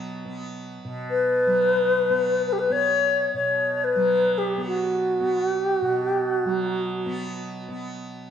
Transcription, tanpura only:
0, 0, Header, 1, 2, 480
1, 0, Start_track
1, 0, Tempo, 500000
1, 7970, End_track
2, 0, Start_track
2, 0, Title_t, "Tanpura"
2, 0, Program_c, 0, 104
2, 0, Note_on_c, 0, 47, 56
2, 0, Note_on_c, 0, 54, 55
2, 0, Note_on_c, 0, 59, 49
2, 241, Note_off_c, 0, 59, 0
2, 241, Note_on_c, 0, 59, 52
2, 809, Note_off_c, 0, 47, 0
2, 813, Note_on_c, 0, 47, 54
2, 1402, Note_off_c, 0, 54, 0
2, 1405, Note_on_c, 0, 54, 46
2, 2013, Note_off_c, 0, 59, 0
2, 2013, Note_on_c, 0, 59, 50
2, 2588, Note_off_c, 0, 59, 0
2, 2588, Note_on_c, 0, 59, 59
2, 3202, Note_off_c, 0, 47, 0
2, 3206, Note_on_c, 0, 47, 45
2, 3793, Note_off_c, 0, 54, 0
2, 3796, Note_on_c, 0, 54, 53
2, 4393, Note_off_c, 0, 59, 0
2, 4393, Note_on_c, 0, 59, 48
2, 4997, Note_off_c, 0, 59, 0
2, 4997, Note_on_c, 0, 59, 50
2, 5580, Note_off_c, 0, 47, 0
2, 5584, Note_on_c, 0, 47, 48
2, 6190, Note_off_c, 0, 54, 0
2, 6194, Note_on_c, 0, 54, 53
2, 6777, Note_off_c, 0, 59, 0
2, 6777, Note_on_c, 0, 59, 60
2, 7375, Note_off_c, 0, 59, 0
2, 7375, Note_on_c, 0, 59, 48
2, 7970, Note_off_c, 0, 47, 0
2, 7970, Note_off_c, 0, 54, 0
2, 7970, Note_off_c, 0, 59, 0
2, 7970, End_track
0, 0, End_of_file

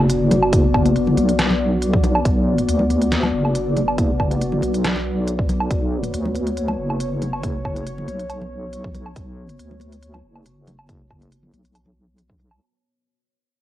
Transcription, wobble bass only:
0, 0, Header, 1, 2, 480
1, 0, Start_track
1, 0, Key_signature, 2, "minor"
1, 0, Tempo, 431655
1, 586, Time_signature, 4, 2, 24, 8
1, 15138, End_track
2, 0, Start_track
2, 0, Title_t, "Wobble bass"
2, 0, Program_c, 0, 39
2, 0, Note_on_c, 0, 30, 95
2, 1289, Note_off_c, 0, 30, 0
2, 1307, Note_on_c, 0, 35, 93
2, 2488, Note_off_c, 0, 35, 0
2, 2506, Note_on_c, 0, 35, 97
2, 2968, Note_off_c, 0, 35, 0
2, 2987, Note_on_c, 0, 38, 93
2, 3688, Note_off_c, 0, 38, 0
2, 3706, Note_on_c, 0, 30, 92
2, 5128, Note_off_c, 0, 30, 0
2, 5146, Note_on_c, 0, 35, 93
2, 6328, Note_off_c, 0, 35, 0
2, 6347, Note_on_c, 0, 35, 95
2, 6808, Note_off_c, 0, 35, 0
2, 6827, Note_on_c, 0, 38, 91
2, 7528, Note_off_c, 0, 38, 0
2, 7546, Note_on_c, 0, 30, 91
2, 8968, Note_off_c, 0, 30, 0
2, 8987, Note_on_c, 0, 35, 93
2, 10169, Note_off_c, 0, 35, 0
2, 10187, Note_on_c, 0, 35, 96
2, 10649, Note_off_c, 0, 35, 0
2, 10669, Note_on_c, 0, 38, 93
2, 11369, Note_off_c, 0, 38, 0
2, 11387, Note_on_c, 0, 30, 90
2, 12808, Note_off_c, 0, 30, 0
2, 12827, Note_on_c, 0, 35, 91
2, 14008, Note_off_c, 0, 35, 0
2, 15138, End_track
0, 0, End_of_file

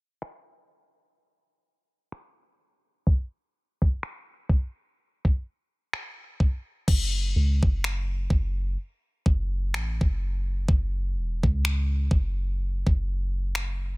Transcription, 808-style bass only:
0, 0, Header, 1, 2, 480
1, 0, Start_track
1, 0, Key_signature, 3, "minor"
1, 0, Tempo, 952381
1, 1546, Time_signature, 4, 2, 24, 8
1, 7042, End_track
2, 0, Start_track
2, 0, Title_t, "808-style bass"
2, 0, Program_c, 0, 38
2, 3467, Note_on_c, 0, 30, 108
2, 3697, Note_off_c, 0, 30, 0
2, 3708, Note_on_c, 0, 37, 96
2, 3841, Note_off_c, 0, 37, 0
2, 3845, Note_on_c, 0, 30, 90
2, 4172, Note_off_c, 0, 30, 0
2, 4186, Note_on_c, 0, 30, 99
2, 4416, Note_off_c, 0, 30, 0
2, 4669, Note_on_c, 0, 30, 105
2, 4905, Note_on_c, 0, 33, 100
2, 4912, Note_off_c, 0, 30, 0
2, 5038, Note_off_c, 0, 33, 0
2, 5046, Note_on_c, 0, 30, 98
2, 5373, Note_off_c, 0, 30, 0
2, 5386, Note_on_c, 0, 30, 101
2, 5625, Note_on_c, 0, 28, 94
2, 5633, Note_off_c, 0, 30, 0
2, 5758, Note_off_c, 0, 28, 0
2, 5764, Note_on_c, 0, 37, 97
2, 6091, Note_off_c, 0, 37, 0
2, 6105, Note_on_c, 0, 30, 99
2, 6469, Note_off_c, 0, 30, 0
2, 6486, Note_on_c, 0, 30, 95
2, 7042, Note_off_c, 0, 30, 0
2, 7042, End_track
0, 0, End_of_file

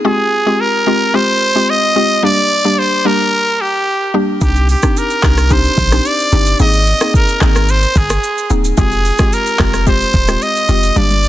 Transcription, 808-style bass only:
0, 0, Header, 1, 2, 480
1, 0, Start_track
1, 0, Tempo, 545455
1, 45, Time_signature, 4, 2, 24, 8
1, 9931, End_track
2, 0, Start_track
2, 0, Title_t, "808-style bass"
2, 0, Program_c, 0, 38
2, 3885, Note_on_c, 0, 36, 111
2, 4182, Note_off_c, 0, 36, 0
2, 4606, Note_on_c, 0, 36, 90
2, 4996, Note_off_c, 0, 36, 0
2, 5083, Note_on_c, 0, 34, 96
2, 5279, Note_off_c, 0, 34, 0
2, 5565, Note_on_c, 0, 31, 93
2, 5760, Note_off_c, 0, 31, 0
2, 5805, Note_on_c, 0, 32, 117
2, 6102, Note_off_c, 0, 32, 0
2, 6524, Note_on_c, 0, 32, 94
2, 6915, Note_off_c, 0, 32, 0
2, 7002, Note_on_c, 0, 31, 95
2, 7198, Note_off_c, 0, 31, 0
2, 7484, Note_on_c, 0, 27, 92
2, 7679, Note_off_c, 0, 27, 0
2, 7724, Note_on_c, 0, 29, 112
2, 8021, Note_off_c, 0, 29, 0
2, 8445, Note_on_c, 0, 29, 98
2, 8836, Note_off_c, 0, 29, 0
2, 8922, Note_on_c, 0, 27, 99
2, 9118, Note_off_c, 0, 27, 0
2, 9405, Note_on_c, 0, 29, 94
2, 9600, Note_off_c, 0, 29, 0
2, 9645, Note_on_c, 0, 31, 106
2, 9931, Note_off_c, 0, 31, 0
2, 9931, End_track
0, 0, End_of_file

